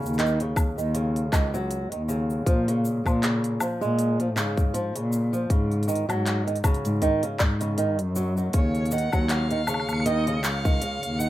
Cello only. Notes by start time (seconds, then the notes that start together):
0.01 D#2
0.77 D#2
1.32 C#2
1.92 D#2
2.46 A#2
3.06 A#2
3.82 A#2
4.36 G#2
4.95 A#2
5.50 G#2
6.09 G#2
6.85 G#2
7.40 G#2
7.99 F#2
8.54 D#2
9.13 D#2
9.89 D#2
10.44 C#2
11.03 D#2